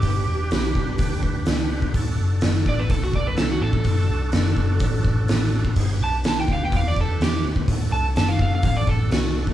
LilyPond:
<<
  \new Staff \with { instrumentName = "Electric slide guitar" } { \time 4/4 \key d \mixolydian \tempo 4 = 126 g'2~ g'8 r4. | r4. d''16 b'16 a'16 fis'16 d''16 b'16 a'16 fis'16 a'8~ | a'2~ a'8 r4. | r8 a''16 r16 a''16 g''16 f''16 g''16 f''16 d''16 a'8 g'8 r8 |
r8 a''16 r16 a''16 f''16 f''16 f''16 f''16 d''16 a'8 fis'8 r8 | }
  \new Staff \with { instrumentName = "Tonewheel organ" } { \time 4/4 \key d \mixolydian <d' g' b'>1 | <d' fis' a'>1~ | <d' fis' a'>1 | \tuplet 3/2 { <ees' gis' c''>8 <d' g' b'>4~ } <d' g' b'>2. |
<d' fis' a'>1 | }
  \new Staff \with { instrumentName = "Picked electric bass" } { \clef bass \time 4/4 \key d \mixolydian g,,8 e,,8 b,,8 b,,8 d,8 d,8 cis,4 | d,,8 fis,,8 fis,,8 a,,8 b,,4 c,8 a,,8 | fis,,8 c,8 fis,,8 fis,,8 a,,8 a,,8 a,,4 | g,,8 b,,8 b,,8 d,8 e,4 e,8 d,8 |
d,,8 c,8 fis,,8 fis,,8 a,,8 a,,8 c,4 | }
  \new DrumStaff \with { instrumentName = "Drums" } \drummode { \time 4/4 <hho bd>4 <hho sn>8 bd8 <hho bd>8 bd8 <hho sn>8. bd16 | <hho bd>4 <hho sn>8 bd8 <hho bd>8 bd8 <hho sn>8. bd16 | <hho bd>4 <hho sn>8 bd8 <hho bd>8 bd8 <hho sn>8. bd16 | <hho bd>4 <hho sn>8 bd8 <hho bd>8 bd8 <hho sn>8. bd16 |
<hho bd>4 <hho sn>8 bd8 <hho bd>8 bd8 <hho sn>8. bd16 | }
>>